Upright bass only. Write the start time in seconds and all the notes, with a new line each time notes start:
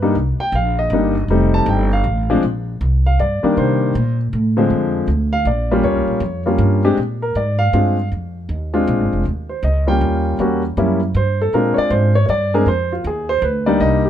Already playing: G2
0.15 C2
0.39 muted upright bass stroke
0.52 A#1
0.90 G1
1.28 F1
1.66 G1
2.04 A1
2.43 A#1
2.81 C2
3.19 G2
3.43 muted upright bass stroke
3.57 C3
3.95 A#2
4.33 A2
4.70 F2
5.08 D2
5.45 A#1
5.84 D#2
5.95 C#2
6.08 A#1
6.20 F2
6.58 G2
6.97 A#2
7.35 G#2
7.73 G2
8.12 F2
8.49 D#2
8.87 A#1
9.00 G#1
9.13 F1
9.25 D#2
9.63 C#2
10.01 D#2
10.39 E2
10.77 F#2
11.14 G2
11.53 A#2
11.78 muted upright bass stroke
11.90 G#2
12.29 G2
12.66 F2
13.04 D#2
13.42 D2
13.80 C2